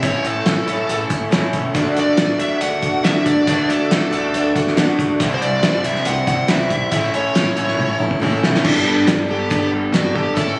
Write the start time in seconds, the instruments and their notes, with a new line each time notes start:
Already playing: tonewheel organ E5
0.03 upright bass A1, twelve-string acoustic guitar A2 E3 A3 C#4 E4, tonewheel organ A4 C#6, lead electric guitar C#5, kick, closed hi-hat
0.24 upright bass A1, twelve-string acoustic guitar C#4 E4, lead electric guitar A4, closed hi-hat
0.29 twelve-string acoustic guitar A3
0.45 upright bass A1, twelve-string acoustic guitar A2 E3 A3 C#4 E4, snare, closed hi-hat
0.67 upright bass A1, clean electric guitar A2 E3, twelve-string acoustic guitar A3 C#4 E4, closed hi-hat
0.89 upright bass A1, twelve-string acoustic guitar E3 A3 C#4 E4, closed hi-hat
1.09 upright bass A1, twelve-string acoustic guitar A3 C#4 E4, kick, closed hi-hat
1.31 twelve-string acoustic guitar A2 E3 A3 C#4 E4, upright bass A2, snare, closed hi-hat
1.53 upright bass E1, kick, closed hi-hat
1.74 upright bass D2, twelve-string acoustic guitar D3 A3 D4 F#4, tonewheel organ F#5 D6, kick, closed hi-hat
1.94 upright bass D2, twelve-string acoustic guitar A3 D4 F#4, closed hi-hat
2.00 lead electric guitar D5
2.16 upright bass A1, twelve-string acoustic guitar D3 A3 D4 F#4, snare, closed hi-hat
2.39 upright bass D3, clean electric guitar D3, twelve-string acoustic guitar A3 D4 F#4, lead electric guitar E5, closed hi-hat
2.59 upright bass D2, twelve-string acoustic guitar D3 A3 D4 F#4, lead electric guitar F#5, closed hi-hat
2.81 upright bass D2, twelve-string acoustic guitar A3 D4 F#4, kick, closed hi-hat
3.03 upright bass D2, twelve-string acoustic guitar D3 A3 D4 F#4, lead electric guitar E5, snare, closed hi-hat
3.26 upright bass D2, lead electric guitar D5, kick, closed hi-hat
3.47 upright bass D2, twelve-string acoustic guitar D3 A3 D4 F#4, kick, closed hi-hat
3.68 upright bass D2, twelve-string acoustic guitar A3 D4 F#4, lead electric guitar A4, closed hi-hat
3.91 upright bass D2, twelve-string acoustic guitar D3 A3 D4 F#4, snare, closed hi-hat
4.13 upright bass D2, clean electric guitar D3, twelve-string acoustic guitar D4 F#4, closed hi-hat
4.17 twelve-string acoustic guitar A3
4.34 upright bass D2, twelve-string acoustic guitar D3 A3 D4, closed hi-hat
4.38 twelve-string acoustic guitar F#4
4.56 upright bass D2, twelve-string acoustic guitar A3 D4 F#4, kick, closed hi-hat
4.67 snare
4.77 upright bass D3, twelve-string acoustic guitar D3 A3 D4 F#4, snare, closed hi-hat
4.99 upright bass C#2, kick, closed hi-hat
5.20 upright bass C2, twelve-string acoustic guitar C3 E3 G3 C4 E4, tonewheel organ G4 E5 C6, kick, closed hi-hat
5.34 lead electric guitar C5
5.41 upright bass C2, twelve-string acoustic guitar G3 C4 E4, lead electric guitar D5, closed hi-hat
5.62 upright bass G1, twelve-string acoustic guitar C3 E3 G3 C4 E4, snare, closed hi-hat
5.84 upright bass C3, clean electric guitar C3 E3, twelve-string acoustic guitar G3 C4 E4, lead electric guitar E5, closed hi-hat
5.95 snare
6.04 upright bass C2, twelve-string acoustic guitar E3 G3 C4, lead electric guitar F#5, closed hi-hat
6.08 twelve-string acoustic guitar E4
6.27 upright bass C2, twelve-string acoustic guitar G3 C4 E4, lead electric guitar F#5, kick, closed hi-hat
6.48 upright bass C2, twelve-string acoustic guitar C3 E3 G3 C4 E4, lead electric guitar E5, snare, closed hi-hat
6.70 upright bass B1, kick, closed hi-hat
6.92 upright bass A1, twelve-string acoustic guitar A2 E3 A3 C#4 E4, tonewheel organ A4 E5 C#6, lead electric guitar E5, kick, closed hi-hat
7.14 upright bass A1, twelve-string acoustic guitar C#4 E4, lead electric guitar C#5, closed hi-hat
7.18 twelve-string acoustic guitar A3
7.35 upright bass A1, twelve-string acoustic guitar A2 E3 A3 C#4 E4, snare, closed hi-hat
7.56 upright bass A1, clean electric guitar A2 E3, twelve-string acoustic guitar A3 C#4 E4, closed hi-hat
7.68 snare
7.77 upright bass A1, twelve-string acoustic guitar E3 A3 C#4 E4, high tom
7.98 upright bass A1, twelve-string acoustic guitar C#4 E4, mid tom
8.03 twelve-string acoustic guitar A3
8.11 kick
8.20 twelve-string acoustic guitar A2 E3 A3 C#4 E4, upright bass A2, mid tom
8.43 upright bass E1, snare
8.55 lead electric guitar C#4, snare
8.64 upright bass G1, twelve-string acoustic guitar G3 B3 D4 A4, lead electric guitar D4, tonewheel organ A4 G5 B5, kick, crash
8.85 upright bass G1, twelve-string acoustic guitar B3 D4 A4
9.06 upright bass G1, twelve-string acoustic guitar G3 B3 D4 A4, snare, closed hi-hat
9.28 upright bass G1, twelve-string acoustic guitar B3 D4 A4, lead electric guitar G4
9.50 upright bass G1, twelve-string acoustic guitar G3 B3 D4 A4, kick, closed hi-hat
9.73 clean electric guitar G3
9.93 upright bass G1, twelve-string acoustic guitar G3 B3 D4 A4, lead electric guitar F#4, snare, closed hi-hat
10.15 upright bass G#1, twelve-string acoustic guitar B3 D4 A4, lead electric guitar G4, kick
10.35 upright bass A1, twelve-string acoustic guitar A2 E3 A3 C#4 E4, lead electric guitar A4, tonewheel organ E5 C#6, kick, closed hi-hat
10.56 twelve-string acoustic guitar E4